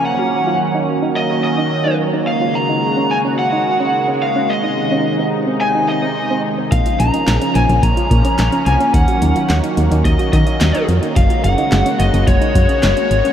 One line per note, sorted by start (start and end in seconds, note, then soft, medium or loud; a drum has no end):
0.00 4.46 A#3 medium
0.00 2.23 C#4 medium
0.05 2.25 D#3 medium
0.05 2.25 F#3 medium
0.05 0.85 F#5 medium
0.19 0.42 F#4 medium
0.47 0.70 F4 medium
0.75 0.98 D#4 medium
1.02 1.26 D#4 medium
1.16 1.43 D#5 loud
1.30 1.53 F#4 medium
1.44 1.96 D#5 loud
1.58 1.81 D#4 medium
1.86 2.09 D#4 medium
2.14 2.25 D#4 medium
2.27 4.47 C#3 medium
2.27 6.68 G#3 medium
2.27 4.47 F#4 medium
2.27 2.56 F5 loud
2.41 2.64 F4 medium
2.55 3.12 A#5 loud
2.69 2.92 D#4 medium
2.97 3.20 C#4 medium
3.11 3.18 G#5 loud
3.25 3.48 C#4 medium
3.39 4.22 F#5 loud
3.52 3.76 D#4 medium
3.80 4.03 C#4 medium
4.08 4.31 C#4 medium
4.22 4.51 F5 medium
4.36 4.47 C#4 medium
4.50 6.70 C3 medium
4.50 6.70 D#3 medium
4.50 6.70 D#4 medium
4.50 5.29 D#5 medium
4.64 4.87 D#4 medium
4.92 5.15 C#4 medium
5.19 5.42 C4 medium
5.47 5.70 C4 medium
5.61 5.87 G#5 loud
5.75 5.98 D#4 medium
5.89 6.40 D#5 medium
6.03 6.26 C4 medium
6.30 6.53 C4 medium
6.58 6.70 C4 medium
6.72 6.83 A#1 loud
6.72 8.92 C#3 medium
6.72 8.92 F3 medium
6.72 13.33 A#3 medium
6.72 11.12 C#4 medium
6.72 7.01 F5 medium
6.72 kick loud
6.72 closed hi-hat medium
6.86 7.09 F4 medium
6.86 closed hi-hat medium
7.00 7.11 A#1 loud
7.00 7.57 A#5 loud
7.00 closed hi-hat medium
7.14 7.37 D#4 medium
7.14 closed hi-hat soft
7.27 7.39 A#1 loud
7.27 snare loud
7.27 clap loud
7.27 closed hi-hat medium
7.41 7.64 C#4 medium
7.41 closed hi-hat medium
7.55 7.67 A#1 loud
7.55 7.81 G#5 loud
7.55 closed hi-hat medium
7.69 7.81 A#1 loud
7.69 7.92 C#4 medium
7.69 closed hi-hat medium
7.83 7.94 A#1 loud
7.83 8.69 A#5 loud
7.83 kick loud
7.83 closed hi-hat medium
7.97 8.20 F4 medium
7.97 closed hi-hat medium
8.11 8.22 A#2 medium
8.11 kick loud
8.11 closed hi-hat medium
8.25 8.48 C#4 medium
8.25 closed hi-hat medium
8.38 8.50 A#1 medium
8.38 snare loud
8.38 clap loud
8.38 closed hi-hat medium
8.52 8.75 C#4 medium
8.52 closed hi-hat medium
8.66 8.78 C2 medium
8.66 8.94 G#5 medium
8.66 closed hi-hat medium
8.80 8.92 C#4 medium
8.80 closed hi-hat medium
8.94 9.05 D#2 loud
8.94 11.14 D#3 medium
8.94 11.14 F#3 medium
8.94 9.74 F#5 medium
8.94 kick loud
8.94 closed hi-hat medium
9.08 9.31 F#4 medium
9.08 closed hi-hat medium
9.22 9.33 D#2 loud
9.22 closed hi-hat medium
9.36 9.59 F4 medium
9.36 closed hi-hat soft
9.50 9.61 D#2 loud
9.50 snare loud
9.50 clap loud
9.50 closed hi-hat medium
9.64 9.87 D#4 medium
9.64 closed hi-hat medium
9.77 9.89 D#2 loud
9.77 closed hi-hat medium
9.91 10.03 D#2 medium
9.91 10.14 D#4 medium
9.91 closed hi-hat medium
10.05 10.17 D#2 loud
10.05 10.32 D#5 loud
10.05 kick loud
10.05 closed hi-hat medium
10.19 10.42 F#4 medium
10.19 closed hi-hat medium
10.33 10.44 D#3 loud
10.33 10.85 D#5 loud
10.33 kick loud
10.33 closed hi-hat medium
10.47 10.70 D#4 medium
10.47 closed hi-hat medium
10.61 10.72 D#2 medium
10.61 snare loud
10.61 clap loud
10.61 closed hi-hat medium
10.75 10.98 D#4 medium
10.75 closed hi-hat medium
10.89 11.00 F2 medium
10.89 closed hi-hat medium
11.03 11.14 D#4 medium
11.03 closed hi-hat medium
11.16 11.28 F#1 loud
11.16 13.33 C#3 medium
11.16 13.33 G#3 medium
11.16 13.33 F#4 medium
11.16 11.44 F5 loud
11.16 kick loud
11.16 closed hi-hat medium
11.30 11.53 F4 medium
11.30 closed hi-hat medium
11.44 11.56 F#1 loud
11.44 11.96 F#5 loud
11.44 closed hi-hat medium
11.58 11.81 D#4 medium
11.58 closed hi-hat soft
11.72 11.83 F#1 loud
11.72 snare loud
11.72 clap loud
11.72 closed hi-hat medium
11.86 12.09 C#4 medium
11.86 closed hi-hat medium
12.00 12.11 F#1 loud
12.00 12.27 D#5 medium
12.00 closed hi-hat medium
12.14 12.25 F#1 loud
12.14 12.37 C#4 medium
12.14 closed hi-hat medium
12.27 12.39 F#1 loud
12.27 12.82 C#5 medium
12.27 kick loud
12.27 closed hi-hat medium
12.41 12.64 D#4 medium
12.41 closed hi-hat medium
12.55 12.67 F#2 medium
12.55 kick medium
12.55 closed hi-hat medium
12.69 12.92 C#4 medium
12.69 closed hi-hat medium
12.83 12.95 F#1 loud
12.83 13.33 C#5 medium
12.83 snare loud
12.83 clap loud
12.83 closed hi-hat medium
12.97 13.20 C#4 medium
12.97 closed hi-hat medium
13.11 13.22 G#1 medium
13.11 closed hi-hat medium
13.25 13.33 C#4 medium
13.25 closed hi-hat medium